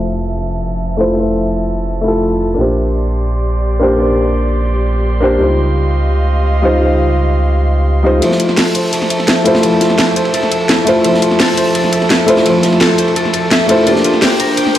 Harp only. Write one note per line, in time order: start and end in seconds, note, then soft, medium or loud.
8.22 8.46 E4 medium
8.40 9.16 F4 medium
8.57 8.92 A4 loud
8.75 10.16 C5 medium
8.93 9.98 A4 medium
9.10 9.52 E5 medium
9.28 9.52 E4 medium
9.46 9.69 F4 medium
9.63 9.87 E4 medium
9.81 10.58 F4 medium
9.99 10.34 A4 loud
10.16 11.57 C5 medium
10.34 11.39 A4 medium
10.52 10.93 E5 medium
10.69 10.93 E4 loud
10.87 11.11 F4 medium
11.05 11.28 E4 medium
11.22 11.99 F4 medium
11.40 11.75 A4 loud
11.58 12.98 C5 medium
11.75 12.81 A4 medium
11.93 12.34 E5 medium
12.10 12.34 E4 loud
12.28 12.52 F4 medium
12.46 12.69 E4 medium
12.63 13.58 F4 medium
12.81 13.16 A4 loud
12.99 14.75 C5 medium
13.16 13.34 A4 medium
13.34 13.69 A4 medium
13.52 14.11 E5 loud
13.69 14.46 A4 medium
13.87 14.79 D4 medium
14.05 14.79 F4 medium
14.22 14.57 G4 loud
14.40 14.79 A#4 medium
14.58 14.79 G4 medium
14.75 14.79 C5 medium